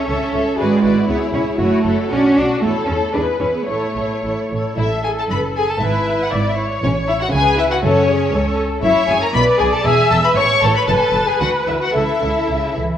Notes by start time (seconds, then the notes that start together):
Already playing: C#4
0.08 C#2 A4 C#5 E5
0.33 C#2 A4 C#5 E5
0.57 G#1 G#3 F#4 G#4 B4 D5
0.82 G#1 E4 F#4 B4 D5
1.08 C#2 B3 E4 G#4 C#5
1.33 C#2 C#4 E4 G#4 C#5
1.58 F#1 A3 E4 F#4 C#5
1.84 F#1 E4 F#4 A4 C#5
2.10 B1 C#4 D4 F#4 D5
2.36 B1 D4 F#4 D5
2.61 E2 A3 E4 A4 C#5
2.87 E2 C#4 E4 A4 C#5
3.14 E2 D4 E4 G#4 B4
3.40 E2 C#4 E4 G#4 B4
3.55 B3
3.67 A1 A3 E4 A4 C#5
3.96 A1 E4 A4 C#5
4.23 A1 E4 A4 C#5
4.51 A1 E4 A4 C#5
4.77 A1 A2 E4 A4 E5
5.04 G#4 G#5
5.17 A4 A5
5.29 F#1 F#2 B4 B5
5.56 G#4 G#5
5.70 A4 A5
5.81 G#1 G#2 E4 B4 E5
6.23 F#5
6.32 G#1 G#2 D5 E5
6.40 D5
6.49 E5
6.57 C#5
6.83 A1 A2 C#4 C#5
7.08 E4 E5
7.21 F#4 F#5
7.32 C#2 C#3 G#4 B4 G#5
7.58 E4 E5
7.71 F#4 F#5
7.83 F#1 F#2 C#4 A4 C#5
8.09 G#4
8.32 C#2 A4
8.83 F#1 F#2 E4 C#5 E5
9.09 F#1 F#2 G#4 G#5
9.22 A#4 A#5
9.34 B1 B2 B4 D5 B5
9.58 B1 B2 G#4 G#5
9.72 A4 A5
9.83 E1 E2 G#4 E5 G#5
10.10 E1 E2 A4 A5
10.24 B4 B5
10.36 A1 A2 C#5 C#6
10.62 A1 A2 A4 A5
10.75 B4 B5
10.88 F#1 F#2 A4 B4 A5
10.95 G#5
11.03 A5
11.14 F#1 F#2
11.27 G#4 G#5
11.40 D2 D3 F#4 F#5
11.67 D2 D3 E4 E5
11.82 F#4 F#5
11.94 C#2 C#3 E4 A4 E5
12.22 C#2 C#3
12.49 C#2 C#3
12.76 C#2 E3